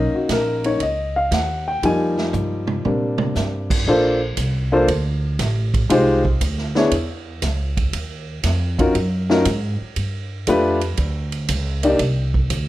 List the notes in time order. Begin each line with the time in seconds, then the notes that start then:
Already playing: B1 A#3 C#4 D#4 D#5
0.13 F#4, muted upright bass stroke
0.29 A#1 A#4, kick, snare, hi-hat pedal, ride
0.64 A#3 C#4 D#4 C#5, ride
0.80 C#2 D#5, kick, ride
1.16 F5
1.31 D#2 F#5, kick, snare, hi-hat pedal, ride
1.68 G5
1.83 F2 F3 G3 A#3 D#4 G#5, kick, ride
2.18 snare
2.33 G2, hi-hat pedal, mid tom
2.67 mid tom
2.85 A#2 G3 A#3 C4 D4, mid tom
3.18 mid tom
3.35 G2, snare, hi-hat pedal
3.70 kick, crash
3.86 A#1 A#3 D4 F4 A4 C5, kick
4.37 C2, kick, hi-hat pedal, ride
4.72 A#3 D4 F4 A4 C5
4.88 D2, kick, ride
5.39 A1, kick, snare, hi-hat pedal, ride
5.74 kick, ride
5.89 C2 G#3 D#4 F4 G4 C5, kick, ride
6.25 kick
6.41 D2, kick, hi-hat pedal, ride
6.58 snare
6.75 B3 D4 E4 G#4 C#5, snare
6.91 E2, kick, ride
7.42 C#2, kick, snare, hi-hat pedal, ride
7.77 kick, ride
7.93 D#2, kick, ride
8.43 F2, kick, snare, hi-hat pedal, ride
8.78 C#4 D#4 F4 F#4 A#4, kick, ride
8.95 F#2, kick, ride
9.30 C#4 D#4 F4 F#4 A#4, snare
9.45 G#2, kick, hi-hat pedal, ride
9.81 muted upright bass stroke
9.96 G2, kick, ride
10.47 F2 A3 D4 F4 G4 B4, kick, hi-hat pedal, ride
10.81 ride
10.97 D2, kick, ride
11.32 ride
11.48 C#2, kick, hi-hat pedal, ride
11.83 A#3 D4 D#4 G4 D5, ride
11.99 C2, kick, ride
12.34 kick
12.50 D2, kick, hi-hat pedal, ride